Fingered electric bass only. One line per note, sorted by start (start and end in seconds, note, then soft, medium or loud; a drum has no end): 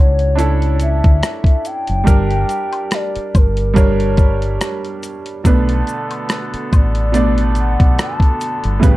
0.00 1.00 C#2 medium
1.05 1.20 D2 medium
1.89 2.05 F#1 medium
2.08 2.43 G1 loud
3.16 muted fingered electric bass stroke soft
3.35 4.57 G1 medium
5.45 5.81 B1 loud
6.54 muted fingered electric bass stroke medium
6.73 7.76 A1 medium
7.80 7.96 B1 loud
8.65 8.81 G1 medium
8.83 8.97 A1 loud